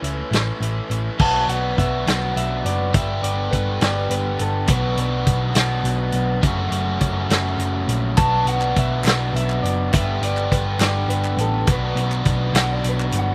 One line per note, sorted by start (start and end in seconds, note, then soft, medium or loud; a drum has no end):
0.00 0.21 C#2 medium
0.00 0.60 E3 medium
0.00 0.32 A3 medium
0.00 0.31 C#4 medium
0.00 0.56 C#5 medium
0.00 closed hi-hat medium
0.04 0.29 E4 medium
0.30 0.50 A1 medium
0.30 0.60 A3 medium
0.30 0.61 C#4 medium
0.30 0.62 E4 medium
0.30 snare loud
0.30 closed hi-hat medium
0.60 0.79 A1 medium
0.60 1.17 E3 medium
0.60 0.91 A3 medium
0.60 0.90 C#4 medium
0.60 0.89 E4 medium
0.60 closed hi-hat medium
0.90 1.09 A1 medium
0.90 1.18 A3 soft
0.90 1.18 C#4 medium
0.90 1.17 E4 medium
0.90 closed hi-hat medium
1.19 1.45 B1 medium
1.19 2.04 B2 medium
1.19 2.05 F#3 medium
1.19 2.08 B3 medium
1.19 2.07 D4 medium
1.19 2.93 F#4 loud
1.19 1.48 A5 medium
1.19 kick loud
1.19 crash loud
1.47 1.74 B1 medium
1.47 1.77 F#5 medium
1.47 closed hi-hat medium
1.78 2.03 B1 medium
1.78 2.06 E5 medium
1.78 kick medium
1.78 closed hi-hat medium
2.07 2.33 B1 medium
2.07 2.94 B2 medium
2.07 2.94 F#3 medium
2.07 2.96 B3 medium
2.07 2.96 D4 medium
2.07 2.36 F#5 medium
2.07 snare loud
2.07 closed hi-hat medium
2.36 2.62 B1 medium
2.36 2.64 E5 medium
2.36 closed hi-hat medium
2.65 2.91 F#1 medium
2.65 2.93 D5 medium
2.65 closed hi-hat medium
2.93 3.20 G1 medium
2.93 3.79 G2 medium
2.93 3.80 D3 loud
2.93 3.80 G3 medium
2.93 3.82 B3 medium
2.93 3.81 D4 loud
2.93 4.68 G4 loud
2.93 3.23 E5 medium
2.93 kick loud
2.93 closed hi-hat medium
3.22 3.49 G1 medium
3.22 3.51 D5 medium
3.22 closed hi-hat medium
3.51 3.78 G1 medium
3.51 3.80 B4 medium
3.51 kick medium
3.51 closed hi-hat medium
3.81 4.07 G1 medium
3.81 4.68 G2 medium
3.81 4.67 D3 medium
3.81 4.67 G3 medium
3.81 4.67 B3 medium
3.81 4.67 D4 medium
3.81 4.10 D5 medium
3.81 snare loud
3.81 closed hi-hat medium
4.10 4.36 G1 medium
4.10 4.39 B4 medium
4.10 closed hi-hat medium
4.39 4.66 G1 loud
4.39 4.69 A4 medium
4.39 closed hi-hat medium
4.67 4.94 B1 medium
4.67 5.54 B2 medium
4.67 5.58 F#3 medium
4.67 5.55 B3 medium
4.67 5.55 D4 medium
4.67 6.44 F#4 loud
4.67 4.97 B4 medium
4.67 kick loud
4.67 closed hi-hat medium
4.97 5.23 B1 medium
4.97 closed hi-hat medium
5.26 5.53 B1 medium
5.26 kick medium
5.26 closed hi-hat medium
5.55 5.81 B1 medium
5.55 6.42 B2 medium
5.55 6.43 F#3 medium
5.55 6.42 B3 medium
5.55 6.42 D4 medium
5.55 snare loud
5.55 closed hi-hat medium
5.84 6.10 B1 medium
5.84 closed hi-hat medium
6.12 6.40 B1 medium
6.12 closed hi-hat medium
6.42 6.69 F#1 medium
6.42 7.28 F#2 medium
6.42 7.28 C#3 medium
6.42 7.30 F#3 medium
6.42 7.30 A3 medium
6.42 7.28 C#4 medium
6.42 8.17 F#4 loud
6.42 kick loud
6.42 closed hi-hat medium
6.71 6.97 F#1 medium
6.71 closed hi-hat medium
7.01 7.27 F#1 medium
7.01 kick medium
7.01 closed hi-hat medium
7.29 7.56 F#1 medium
7.29 8.17 F#2 medium
7.29 8.17 C#3 medium
7.29 8.16 F#3 medium
7.29 8.16 A3 medium
7.29 8.16 C#4 medium
7.29 snare loud
7.29 closed hi-hat medium
7.58 7.85 F#1 medium
7.58 closed hi-hat medium
7.87 8.14 A#1 medium
7.87 closed hi-hat medium
8.17 8.44 B1 medium
8.17 9.04 B2 medium
8.17 9.04 F#3 medium
8.17 9.07 B3 loud
8.17 9.05 D4 loud
8.17 9.91 F#4 loud
8.17 8.46 A5 loud
8.17 kick loud
8.17 clap medium
8.17 closed hi-hat medium
8.45 8.72 B1 medium
8.45 8.76 F#5 medium
8.45 closed hi-hat medium
8.61 clap medium
8.76 9.02 B1 medium
8.76 9.06 E5 medium
8.76 kick medium
8.76 closed hi-hat medium
9.04 9.31 B1 medium
9.04 9.93 F#3 medium
9.04 9.94 B3 medium
9.04 9.95 D4 medium
9.04 9.35 F#5 medium
9.04 snare loud
9.04 clap medium
9.04 closed hi-hat medium
9.09 9.93 B2 medium
9.33 9.60 B1 medium
9.33 9.62 E5 medium
9.33 clap soft
9.33 closed hi-hat medium
9.50 clap medium
9.63 9.90 F#1 medium
9.63 9.92 D5 medium
9.63 clap soft
9.63 closed hi-hat medium
9.92 10.19 G1 medium
9.92 10.78 G2 medium
9.92 10.79 D3 medium
9.92 10.80 G3 medium
9.92 10.81 B3 loud
9.92 10.81 D4 loud
9.92 11.67 G4 loud
9.92 10.22 E5 medium
9.92 kick loud
9.92 clap medium
9.92 closed hi-hat medium
10.21 10.48 G1 medium
10.21 10.52 D5 medium
10.21 closed hi-hat medium
10.37 clap medium
10.52 10.78 G1 medium
10.52 10.80 B4 medium
10.52 kick medium
10.52 closed hi-hat medium
10.79 11.06 G1 medium
10.79 11.67 G3 medium
10.79 11.67 B3 medium
10.79 11.67 D4 medium
10.79 11.09 D5 medium
10.79 snare loud
10.79 clap loud
10.79 closed hi-hat medium
10.83 11.68 G2 medium
10.83 11.66 D3 medium
11.08 11.35 G1 medium
11.08 11.38 B4 medium
11.08 closed hi-hat medium
11.25 clap medium
11.37 11.64 A1 medium
11.37 11.68 A4 medium
11.37 clap soft
11.37 closed hi-hat medium
11.67 11.94 B1 medium
11.67 12.53 B2 medium
11.67 12.55 F#3 loud
11.67 12.53 B3 medium
11.67 12.52 D4 medium
11.67 13.35 F#4 medium
11.67 kick loud
11.67 clap medium
11.67 closed hi-hat medium
11.72 11.98 B4 loud
11.95 12.22 B1 medium
11.95 closed hi-hat medium
12.12 clap medium
12.25 12.52 B1 medium
12.25 kick medium
12.25 closed hi-hat medium
12.53 12.80 B1 medium
12.53 13.35 B2 medium
12.53 13.35 F#3 medium
12.53 13.35 B3 medium
12.53 13.35 D4 medium
12.53 snare loud
12.53 clap loud
12.53 closed hi-hat medium
12.58 12.71 F#5 loud
12.73 12.86 D5 medium
12.84 13.10 B1 medium
12.84 clap soft
12.84 closed hi-hat medium
12.89 13.01 B4 medium
13.00 clap medium
13.05 13.16 D5 medium
13.12 13.35 G1 loud
13.12 clap soft
13.12 closed hi-hat medium
13.19 13.31 F#5 medium